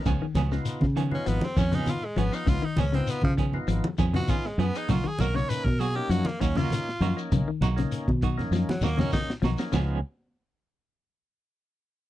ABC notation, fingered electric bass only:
X:1
M:4/4
L:1/16
Q:1/4=99
K:Dbmix
V:1 name="Fingered electric bass" clef=bass
D,, z D,,2 z D,3 A,,, z F,,2 z2 A,,, z | D,, z D,,2 z D,3 A,,, z F,,2 z2 G,, z | C,, z C,,2 z C,3 G,, z E,,2 z2 G,, z | C,, z C,,2 z C,3 G,, z E,,2 z2 C,, z |
D,,2 z12 z2 |]